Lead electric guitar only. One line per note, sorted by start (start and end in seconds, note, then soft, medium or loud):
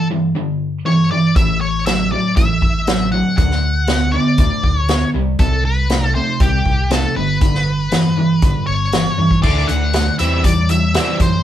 0.86 1.10 C#5 medium
1.11 1.36 D5 medium
1.36 1.60 E5 medium
1.61 1.86 C#5 medium
1.86 2.10 E5 medium
2.12 2.35 D5 medium
2.36 3.08 E5 medium
3.12 3.36 F#5 medium
3.37 4.15 F#5 medium
4.12 4.77 D5 medium
4.77 5.10 C#5 medium
5.40 5.63 A4 medium
5.65 6.15 B4 loud
6.15 6.41 C5 loud
6.41 6.93 G4 medium
6.92 7.16 A4 medium
7.16 8.89 B4 medium
8.67 9.39 C#5 medium
9.43 9.69 D5 medium
9.67 10.15 F#5 medium
10.19 10.44 E5 medium
10.45 10.70 D5 medium
10.71 11.21 E5 medium
11.22 11.43 C5 medium